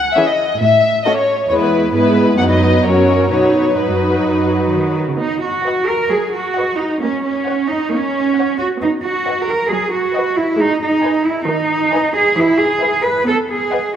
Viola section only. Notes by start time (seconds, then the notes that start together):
0.16 E3 C#4
1.06 A3 C#4
1.50 G#3 B3
1.94 G#3 B3
2.38 F#3 B3
2.85 F#3 C#4
3.32 F#3 D#4
3.78 F#3 D#4
5.21 B3
6.12 F#3
7.03 A#3
7.93 A#3
8.82 B3
9.70 F#3
10.59 G#3
11.49 D#3
12.38 E3
13.27 B3